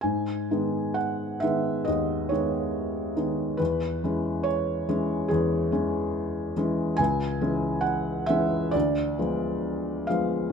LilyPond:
<<
  \new Staff \with { instrumentName = "Felt piano" } { \time 4/4 \key gis \minor \tempo 4 = 69 gis''4 fis''8 e''8 dis''8 cis''4. | b'4 cis''4 gis'4. r8 | gis''4 fis''8 e''8 d''4. f''8 | }
  \new Staff \with { instrumentName = "Felt piano" } { \clef bass \time 4/4 \key gis \minor gis,8 <dis gis b>4 <dis gis b>8 dis,8 <dis gis b>4 <dis gis b>8 | e,8 <e gis cis'>4 <e gis cis'>8 e,8 <e gis cis'>4 <e gis cis'>8 | cis,8 <e gis cis'>4 <e gis cis'>8 d,8 <f aes b>4 <f aes b>8 | }
>>